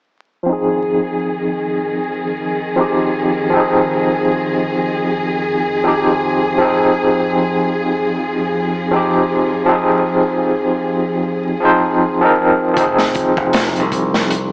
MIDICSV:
0, 0, Header, 1, 5, 480
1, 0, Start_track
1, 0, Key_signature, -4, "minor"
1, 0, Tempo, 769231
1, 290, Time_signature, 4, 2, 24, 8
1, 9061, End_track
2, 0, Start_track
2, 0, Title_t, "Tine electric piano"
2, 0, Program_c, 0, 4
2, 269, Note_on_c, 0, 53, 68
2, 287, Note_on_c, 0, 60, 61
2, 308, Note_on_c, 0, 63, 65
2, 328, Note_on_c, 0, 68, 78
2, 388, Control_c, 0, 64, 127
2, 1694, Note_off_c, 0, 53, 0
2, 1703, Note_off_c, 0, 60, 0
2, 1714, Note_off_c, 0, 63, 0
2, 1722, Note_on_c, 0, 53, 72
2, 1723, Note_off_c, 0, 68, 0
2, 1733, Note_on_c, 0, 60, 62
2, 1741, Note_on_c, 0, 63, 63
2, 1752, Note_on_c, 0, 67, 76
2, 1791, Note_off_c, 0, 53, 0
2, 1796, Note_off_c, 0, 60, 0
2, 1801, Note_off_c, 0, 63, 0
2, 1806, Note_off_c, 0, 67, 0
2, 2183, Note_on_c, 0, 53, 75
2, 2205, Note_on_c, 0, 60, 67
2, 2224, Note_on_c, 0, 63, 67
2, 2245, Note_on_c, 0, 68, 79
2, 3611, Note_off_c, 0, 53, 0
2, 3622, Note_off_c, 0, 60, 0
2, 3632, Note_off_c, 0, 63, 0
2, 3640, Note_on_c, 0, 53, 70
2, 3642, Note_off_c, 0, 68, 0
2, 3648, Note_on_c, 0, 60, 67
2, 3659, Note_on_c, 0, 63, 67
2, 3668, Note_on_c, 0, 67, 76
2, 3710, Note_off_c, 0, 53, 0
2, 3714, Note_off_c, 0, 60, 0
2, 3719, Note_off_c, 0, 63, 0
2, 3724, Note_off_c, 0, 67, 0
2, 4107, Note_on_c, 0, 53, 71
2, 4129, Note_on_c, 0, 60, 71
2, 4148, Note_on_c, 0, 63, 68
2, 4168, Note_on_c, 0, 68, 81
2, 5533, Note_off_c, 0, 53, 0
2, 5544, Note_off_c, 0, 60, 0
2, 5553, Note_off_c, 0, 63, 0
2, 5561, Note_on_c, 0, 53, 72
2, 5564, Note_off_c, 0, 68, 0
2, 5572, Note_on_c, 0, 60, 66
2, 5581, Note_on_c, 0, 63, 67
2, 5593, Note_on_c, 0, 67, 83
2, 5630, Note_off_c, 0, 53, 0
2, 5636, Note_off_c, 0, 60, 0
2, 5641, Note_off_c, 0, 63, 0
2, 5646, Note_off_c, 0, 67, 0
2, 6025, Note_on_c, 0, 53, 79
2, 6045, Note_on_c, 0, 60, 70
2, 6064, Note_on_c, 0, 63, 70
2, 6085, Note_on_c, 0, 68, 81
2, 7216, Note_off_c, 0, 53, 0
2, 7226, Note_off_c, 0, 60, 0
2, 7236, Note_off_c, 0, 63, 0
2, 7239, Note_on_c, 0, 53, 88
2, 7246, Note_off_c, 0, 68, 0
2, 7248, Note_on_c, 0, 60, 73
2, 7260, Note_on_c, 0, 63, 75
2, 7269, Note_on_c, 0, 72, 90
2, 7587, Note_off_c, 0, 53, 0
2, 7592, Note_off_c, 0, 60, 0
2, 7598, Note_off_c, 0, 63, 0
2, 7602, Note_off_c, 0, 72, 0
2, 7618, Note_on_c, 0, 53, 76
2, 7628, Note_on_c, 0, 60, 71
2, 7639, Note_on_c, 0, 63, 74
2, 7649, Note_on_c, 0, 70, 85
2, 7939, Note_off_c, 0, 53, 0
2, 7945, Note_off_c, 0, 60, 0
2, 7947, Note_on_c, 0, 53, 77
2, 7951, Note_off_c, 0, 63, 0
2, 7956, Note_off_c, 0, 70, 0
2, 7968, Note_on_c, 0, 60, 69
2, 7977, Control_c, 0, 64, 0
2, 7985, Note_on_c, 0, 63, 68
2, 8007, Note_on_c, 0, 68, 79
2, 8089, Control_c, 0, 64, 127
2, 9061, Note_off_c, 0, 53, 0
2, 9061, Note_off_c, 0, 60, 0
2, 9061, Note_off_c, 0, 63, 0
2, 9061, Note_off_c, 0, 68, 0
2, 9061, End_track
3, 0, Start_track
3, 0, Title_t, "String section"
3, 0, Program_c, 1, 48
3, 294, Note_on_c, 1, 51, 62
3, 295, Note_on_c, 1, 41, 63
3, 296, Note_on_c, 1, 68, 70
3, 4107, Note_off_c, 1, 51, 0
3, 4132, Note_on_c, 1, 53, 66
3, 7945, Note_off_c, 1, 53, 0
3, 7947, Note_off_c, 1, 41, 0
3, 7948, Note_off_c, 1, 68, 0
3, 9061, End_track
4, 0, Start_track
4, 0, Title_t, "Fingered electric bass"
4, 0, Program_c, 2, 33
4, 7969, Note_on_c, 2, 29, 92
4, 8319, Note_off_c, 2, 29, 0
4, 8344, Note_on_c, 2, 29, 94
4, 8588, Note_on_c, 2, 36, 81
4, 8597, Note_off_c, 2, 29, 0
4, 9061, Note_off_c, 2, 36, 0
4, 9061, End_track
5, 0, Start_track
5, 0, Title_t, "Drums"
5, 7967, Note_on_c, 9, 36, 96
5, 7967, Note_on_c, 9, 42, 75
5, 8029, Note_off_c, 9, 42, 0
5, 8030, Note_off_c, 9, 36, 0
5, 8102, Note_on_c, 9, 38, 46
5, 8165, Note_off_c, 9, 38, 0
5, 8203, Note_on_c, 9, 42, 63
5, 8209, Note_on_c, 9, 36, 94
5, 8265, Note_off_c, 9, 42, 0
5, 8271, Note_off_c, 9, 36, 0
5, 8343, Note_on_c, 9, 36, 95
5, 8405, Note_off_c, 9, 36, 0
5, 8443, Note_on_c, 9, 42, 86
5, 8452, Note_on_c, 9, 38, 111
5, 8506, Note_off_c, 9, 42, 0
5, 8514, Note_off_c, 9, 38, 0
5, 8585, Note_on_c, 9, 42, 38
5, 8647, Note_off_c, 9, 42, 0
5, 8685, Note_on_c, 9, 36, 78
5, 8686, Note_on_c, 9, 42, 59
5, 8748, Note_off_c, 9, 36, 0
5, 8749, Note_off_c, 9, 42, 0
5, 8825, Note_on_c, 9, 38, 53
5, 8888, Note_off_c, 9, 38, 0
5, 8927, Note_on_c, 9, 42, 81
5, 8989, Note_off_c, 9, 42, 0
5, 9061, End_track
0, 0, End_of_file